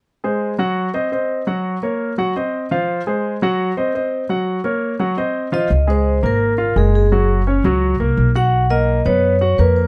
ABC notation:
X:1
M:4/4
L:1/8
Q:1/4=170
K:Db
V:1 name="Vibraphone"
z8 | z8 | z8 | z6 z e- |
e c2 B3 A A- | A z6 g- | g e2 d3 _c =c |]
V:2 name="Grand piano"
z [A,Ac]2 [G,Gg]2 [Cce] [Cce]2 | [G,Gg]2 [B,Bd]2 [G,Gg] [Cce]2 [F,Ff]- | [F,Ff] [A,Ac]2 [G,Gg]2 [Cce] [Cce]2 | [G,Gg]2 [B,Bd]2 [G,Gg] [Cce]2 [F,Ff] |
z [A,A]2 [B,B]2 [Ff] [A,A]2 | [G,G]2 [Dd] [G,G]2 [B,B]2 [Gg]- | [Gg] [B,B]2 [_C_c]2 [Gg] [B,B]2 |]
V:3 name="Upright bass" clef=bass
z8 | z8 | z8 | z8 |
D,,3 A,,,3 G,,,2- | G,,,3 D,,2 C,, _C,,2- | _C,,3 G,,3 F,,2 |]